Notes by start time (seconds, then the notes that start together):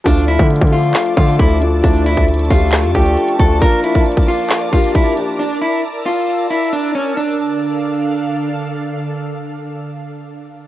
0.04 D2 F3 A3 D4 F4 A4 D5 A5 D6, kick, closed hi-hat
0.17 closed hi-hat
0.28 E4, closed hi-hat
0.39 D3, kick, closed hi-hat
0.50 closed hi-hat
0.56 closed hi-hat
0.61 D3, kick, closed hi-hat
0.67 F3, closed hi-hat
0.72 A3 D4 F4
0.84 closed hi-hat
0.94 snare, clap, closed hi-hat
1.06 closed hi-hat
1.15 D3 F3 A3 D4 F4, kick, closed hi-hat
1.28 closed hi-hat
1.39 D2 E4, kick, closed hi-hat
1.50 closed hi-hat
1.60 F3 A3 D4 F4, closed hi-hat
1.82 D2 F3 A3 D4 E4 C#6, kick, closed hi-hat
1.95 closed hi-hat
2.06 E4, closed hi-hat
2.17 D2, kick, closed hi-hat
2.28 closed hi-hat
2.34 closed hi-hat
2.39 closed hi-hat
2.45 F3, closed hi-hat
2.50 D2 A3 D4 F4 G4, kick, open hi-hat
2.61 closed hi-hat
2.72 snare, clap, closed hi-hat
2.84 F2, closed hi-hat
2.93 D2 F3 A3 D4 F4 G4, kick, closed hi-hat
3.06 closed hi-hat
3.17 closed hi-hat
3.28 closed hi-hat
3.38 D2 F3 A3 D4 F4 A4, kick, closed hi-hat
3.60 F3 A#3 D4 F4 A#4 D6, kick, closed hi-hat
3.73 closed hi-hat
3.84 E4, closed hi-hat
3.95 kick, closed hi-hat
4.06 closed hi-hat
4.12 closed hi-hat
4.17 kick, closed hi-hat
4.23 F3, closed hi-hat
4.28 A#3 D4 F4
4.39 closed hi-hat
4.50 snare, clap, closed hi-hat
4.61 closed hi-hat
4.71 F3 A#3 D4 F4 G4, kick, closed hi-hat
4.84 closed hi-hat
4.95 E4, kick, closed hi-hat
5.06 closed hi-hat
5.15 F3 A#3 D4 G4, closed hi-hat
5.39 D4 E6
5.62 E4
6.06 F4
6.50 E4
6.73 D4
6.95 C#4
7.17 D3 D4 A4 F5